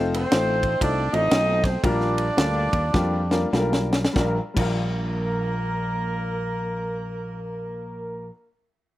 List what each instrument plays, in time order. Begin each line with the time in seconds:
Already playing: fingered electric bass F1, upright piano A3 C4 D#4 F4 C5
0.14 horn section C4 D#4 A4 C5, ride
0.31 fingered electric bass A1, upright piano A3 C4 D#4 F4 C5, snare, ride
0.63 kick, ride
0.80 fingered electric bass C2, upright piano A3 C4 D#4 F4 C5, horn section D4 A4 D5, kick, ride
1.12 fingered electric bass A1, upright piano A3 C4 D#4 F4 D5, horn section D#4 A4 C5 D#5, ride
1.31 fingered electric bass B1, upright piano A3 C4 D#4 F4 C5, snare, ride
1.64 horn section C4 C5, kick, snare, ride
1.83 fingered electric bass A#1, upright piano A#2 G3 A#3 D4 F4 A#4, horn section D4 F4 G4 D5, kick, ride
2.01 snare
2.18 ride
2.37 fingered electric bass D2, upright piano G3 A#3 D4 F4 A4, snare, ride
2.73 fingered electric bass D#2, kick, ride
2.93 fingered electric bass F2, upright piano G3 A#3 D4 F4 G4, kick, snare
3.31 upright piano G3 A#3 D4 F4 A#4, snare
3.53 fingered electric bass B1, upright piano G3 A#3 D4 F4 A4, snare
3.60 upright piano A#4
3.73 snare
3.93 snare
4.05 snare
4.13 fingered electric bass A#1, upright piano A#1 G3 D4, horn section A#3 A#4, kick, snare
4.17 upright piano F4 A#4
4.54 fingered electric bass A#1, upright piano A#1 G3 D4, horn section A#3 A#4, kick, crash
4.58 upright piano F4 A#4